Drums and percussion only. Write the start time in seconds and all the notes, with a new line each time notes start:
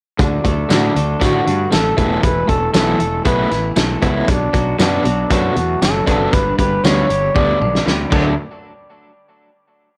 0.19 kick, closed hi-hat
0.45 kick, closed hi-hat
0.70 snare, closed hi-hat, tambourine
0.96 closed hi-hat
1.21 kick, closed hi-hat
1.47 closed hi-hat
1.72 snare, closed hi-hat, tambourine
1.98 kick, closed hi-hat
2.23 kick, closed hi-hat
2.49 kick, closed hi-hat
2.74 snare, closed hi-hat, tambourine
3.00 closed hi-hat
3.25 kick, closed hi-hat
3.51 snare, closed hi-hat
3.76 snare, closed hi-hat, tambourine
4.02 kick, closed hi-hat
4.28 kick, closed hi-hat
4.54 kick, closed hi-hat
4.79 snare, closed hi-hat, tambourine
5.05 closed hi-hat
5.30 kick, closed hi-hat
5.56 closed hi-hat
5.82 snare, closed hi-hat, tambourine
6.07 kick, closed hi-hat
6.33 kick, closed hi-hat
6.59 kick, closed hi-hat
6.84 snare, closed hi-hat, tambourine
7.10 closed hi-hat
7.36 kick, high tom
7.61 mid tom
7.75 snare
7.87 snare
8.12 kick, crash